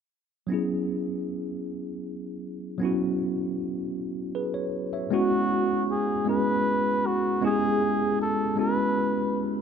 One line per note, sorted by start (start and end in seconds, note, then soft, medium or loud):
0.47 2.75 F#3 medium
0.47 2.76 B3 medium
0.47 2.77 C#4 medium
0.52 2.78 E4 medium
0.52 2.78 G#4 medium
2.78 5.06 F#3 medium
2.78 5.07 B3 medium
2.78 5.08 C#4 medium
2.83 5.09 E4 medium
2.83 5.09 F#4 medium
4.35 4.53 G#4 soft
4.35 4.53 B4 medium
4.54 4.90 C#5 medium
4.93 5.29 C#5 soft
4.93 5.29 E5 soft
5.11 6.13 G#3 medium
5.11 6.14 B3 medium
5.11 6.14 C#4 medium
5.11 6.15 E4 medium
5.11 5.85 F#4 medium
5.11 6.15 F#4 medium
5.91 6.25 G#4 medium
6.25 7.28 G#3 soft
6.25 7.29 B3 medium
6.25 7.29 C#4 soft
6.25 7.30 E4 soft
6.25 7.30 G#4 medium
6.25 7.08 B4 medium
7.06 7.43 F#4 medium
7.41 8.44 G#3 medium
7.41 8.45 B3 medium
7.41 8.45 C#4 medium
7.41 8.45 E4 medium
7.41 7.50 G4 medium
7.41 8.16 G#4 loud
7.51 8.49 G#4 medium
8.21 8.56 A4 medium
8.56 9.59 G#3 soft
8.56 9.60 B3 soft
8.56 9.60 C#4 medium
8.56 9.60 E4 soft
8.56 9.61 F#4 medium
8.56 9.41 B4 medium